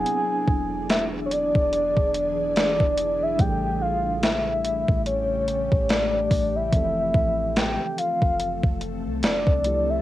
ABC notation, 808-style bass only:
X:1
M:4/4
L:1/16
Q:"Swing 16ths" 1/4=72
K:F
V:1 name="808-style bass" clef=bass
z2 E,,,4- E,,, E,,,2 E,,,4 E,,,3 | A,,,6- A,,, A,,,4 A,,,3 A,,,2 | F,,,2 A,,,3 z2 F,,,2 F,,,2 C,, F,,, C,,3 |]